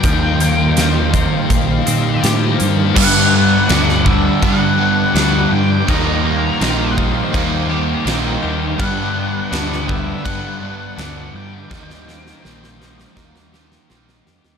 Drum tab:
CC |----------------|x---x---x---x---|x---x---x---x---|x---x---x---x---|
HH |x-x-x-x-x-x-x-x-|----------------|----------------|----------------|
SD |----o-------o---|----oo------o---|----o-------o---|----oo------o---|
BD |o-----o-o-------|o-----o-o-------|o-----o-o-------|o-----o-o-------|

CC |----------------|
HH |----------------|
SD |oooooooooooooooo|
BD |o-------o-------|